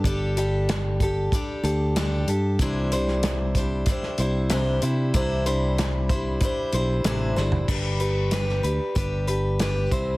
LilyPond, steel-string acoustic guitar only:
\new Staff \with { instrumentName = "Steel-string acoustic guitar" } { \time 4/4 \key g \major \tempo 4 = 94 <g d' g' a'>8 <g d' g' a'>4 <d' g' a'>8 <g d' g' a'>8 <d' g' a'>8 <g d' g' a'>8 <d' g' a'>8 | <c e g d' e' c''>8 <c e g d' e' c''>4 <g d' e' c''>8 <g d' e' c''>8 <g d' e' c''>8 <c e g d' e' c''>8 <g d' e' c''>8 | <c e g d' e' c''>8 <c e g d' e' c''>4 <g d' e' c''>8 <g d' e' c''>8 <g d' e' c''>8 <c e g d' e' c''>8 <g d' e' c''>8 | <g d' g' b'>8 <d' g' b'>8 <g d' g' b'>8 <d' g' b'>8 <g d' g' b'>8 <d' g' b'>8 <g d' g' b'>8 <c e g c' e' c''>8 | }